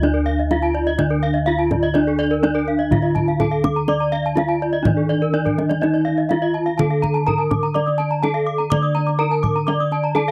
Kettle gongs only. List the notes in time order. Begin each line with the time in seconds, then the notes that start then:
Already playing: D2
0.02 D4
0.51 D#4
0.99 D3
1.48 D#4
1.95 D4
2.91 D3
3.40 D#4
3.89 D5
4.38 D#4
4.86 D#3
5.34 D#4
5.83 D#4
6.31 D#4
6.79 D3
7.28 D#4
7.75 D5
8.24 D#4
8.72 D3
9.21 D#4
9.68 D5
10.17 D#4